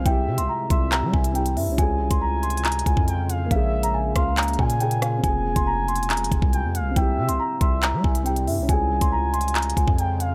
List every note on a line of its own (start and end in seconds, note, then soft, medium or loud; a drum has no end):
0.00 1.75 C3 medium
0.00 1.30 C4 medium
0.05 0.29 C2 loud
0.05 1.77 G3 medium
0.05 1.32 E4 medium
0.05 1.77 E4 medium
0.05 0.66 E5 loud
0.05 0.36 G5 loud
0.05 kick loud
0.05 closed hi-hat medium
0.10 1.35 G4 medium
0.27 0.40 C3 loud
0.38 0.48 C2 loud
0.38 0.47 C6 medium
0.38 closed hi-hat medium
0.49 0.67 A#5 medium
0.70 1.04 C2 loud
0.70 1.31 E5 loud
0.70 0.89 C6 medium
0.70 kick loud
0.70 closed hi-hat medium
0.92 1.10 A#5 medium
0.92 clap loud
0.92 closed hi-hat medium
1.03 1.13 G3 loud
1.13 1.58 C2 loud
1.13 1.32 G#5 medium
1.13 kick medium
1.24 closed hi-hat medium
1.33 1.77 C4 medium
1.33 1.78 E4 soft
1.33 1.53 G5 medium
1.33 closed hi-hat medium
1.38 1.80 G4 medium
1.46 closed hi-hat medium
1.57 1.69 G2 loud
1.57 1.75 E5 medium
1.57 open hi-hat medium
1.67 1.78 C2 loud
1.72 3.44 C#4 medium
1.77 2.01 C#2 loud
1.77 5.20 C#3 medium
1.77 3.49 G#3 medium
1.77 3.47 F4 medium
1.77 3.49 F4 medium
1.77 3.04 G#5 loud
1.77 2.09 G#5 loud
1.77 kick loud
1.77 closed hi-hat medium
1.82 3.49 G#4 medium
2.00 2.10 C2 loud
2.11 2.83 C#2 loud
2.11 2.20 C6 medium
2.11 kick loud
2.11 closed hi-hat medium
2.21 2.40 A#5 medium
2.43 2.61 C6 medium
2.43 closed hi-hat medium
2.50 closed hi-hat medium
2.57 closed hi-hat medium
2.64 2.83 A#5 medium
2.64 clap loud
2.64 closed hi-hat medium
2.72 closed hi-hat medium
2.79 closed hi-hat medium
2.86 2.96 C#2 loud
2.86 3.47 G#5 medium
2.86 kick medium
2.86 closed hi-hat medium
2.97 3.49 F2 loud
2.97 kick loud
3.08 3.28 G5 medium
3.08 closed hi-hat medium
3.29 3.50 F5 medium
3.29 closed hi-hat medium
3.46 4.75 A#3 medium
3.51 4.13 A#1 loud
3.51 5.22 A#3 medium
3.51 4.78 C#4 medium
3.51 5.22 G#4 medium
3.51 4.12 E5 loud
3.51 3.81 F5 loud
3.51 kick loud
3.51 closed hi-hat medium
3.56 4.80 G#4 medium
3.83 3.93 A#5 medium
3.83 closed hi-hat medium
3.94 4.12 G#5 medium
4.16 4.57 C#2 loud
4.16 4.56 F5 medium
4.16 4.34 C6 medium
4.16 kick loud
4.16 cross-stick medium
4.16 closed hi-hat medium
4.37 4.56 A#5 medium
4.37 clap loud
4.37 closed hi-hat medium
4.43 closed hi-hat medium
4.48 closed hi-hat medium
4.53 closed hi-hat soft
4.59 5.21 A#2 loud
4.59 4.77 G#5 medium
4.59 5.20 G#5 medium
4.59 kick medium
4.70 closed hi-hat medium
4.78 5.22 A#3 soft
4.78 5.24 C#4 soft
4.78 4.99 G5 medium
4.78 closed hi-hat medium
4.83 5.25 G#4 medium
4.91 closed hi-hat medium
5.02 5.20 F5 medium
5.02 cross-stick loud
5.02 closed hi-hat medium
5.18 6.89 C4 medium
5.23 5.47 F1 loud
5.23 6.95 C3 medium
5.23 6.95 G#3 medium
5.23 6.93 F4 medium
5.23 6.95 F4 medium
5.23 5.54 G#5 loud
5.23 6.49 G#5 loud
5.23 kick loud
5.23 closed hi-hat medium
5.28 6.95 G#4 medium
5.45 5.55 E1 loud
5.56 6.01 F1 loud
5.56 5.65 C6 medium
5.56 kick medium
5.56 closed hi-hat medium
5.67 5.85 A#5 medium
5.88 6.07 C6 medium
5.88 closed hi-hat soft
5.96 6.17 E1 loud
5.96 closed hi-hat medium
6.03 closed hi-hat medium
6.10 6.28 A#5 medium
6.10 clap loud
6.10 closed hi-hat medium
6.15 6.31 F1 loud
6.15 closed hi-hat medium
6.24 closed hi-hat medium
6.31 6.42 F1 loud
6.31 6.92 G#5 medium
6.31 kick medium
6.31 closed hi-hat medium
6.42 6.65 C2 loud
6.42 kick loud
6.53 6.74 G5 medium
6.53 closed hi-hat medium
6.64 6.82 F2 loud
6.75 6.95 F5 medium
6.75 closed hi-hat medium
6.80 6.95 C2 loud
6.91 8.20 C4 medium
6.96 7.19 C2 loud
6.96 8.67 C3 medium
6.96 8.67 G3 medium
6.96 8.23 E4 medium
6.96 8.67 E4 medium
6.96 7.57 E5 loud
6.96 7.27 G5 loud
6.96 kick loud
6.96 closed hi-hat medium
7.01 8.26 G4 medium
7.18 7.30 C3 loud
7.28 7.39 C2 loud
7.28 7.38 C6 medium
7.28 closed hi-hat medium
7.40 7.58 A#5 medium
7.61 7.95 C2 loud
7.61 8.22 E5 loud
7.61 7.79 C6 medium
7.61 kick loud
7.61 closed hi-hat medium
7.83 8.01 A#5 medium
7.83 clap loud
7.83 closed hi-hat medium
7.93 8.04 G3 loud
8.04 8.49 C2 loud
8.04 8.22 G#5 medium
8.04 kick medium
8.15 closed hi-hat medium
8.23 8.68 C4 medium
8.23 8.69 E4 soft
8.23 8.44 G5 medium
8.23 closed hi-hat medium
8.29 8.70 G4 medium
8.36 closed hi-hat medium
8.47 8.60 G2 loud
8.47 8.66 E5 medium
8.47 open hi-hat medium
8.58 8.68 C2 loud
8.63 10.35 C#4 medium
8.68 8.92 C#2 loud
8.68 10.35 C#3 medium
8.68 10.35 G#3 medium
8.68 10.35 F4 medium
8.68 9.94 G#5 loud
8.68 8.99 G#5 loud
8.68 kick loud
8.68 closed hi-hat medium
8.73 10.35 G#4 medium
8.91 9.01 C2 loud
9.01 9.74 C#2 loud
9.01 9.10 C6 medium
9.01 kick medium
9.01 closed hi-hat medium
9.12 9.30 A#5 medium
9.34 9.52 C6 medium
9.34 closed hi-hat medium
9.41 closed hi-hat medium
9.48 closed hi-hat medium
9.55 9.73 A#5 medium
9.55 clap loud
9.55 closed hi-hat medium
9.62 closed hi-hat medium
9.70 closed hi-hat medium
9.77 9.87 C#2 loud
9.77 10.35 G#5 medium
9.77 kick medium
9.77 closed hi-hat medium
9.88 10.35 F2 loud
9.88 kick loud
9.98 10.19 G5 medium
9.98 closed hi-hat medium
10.20 10.35 F5 medium
10.20 closed hi-hat medium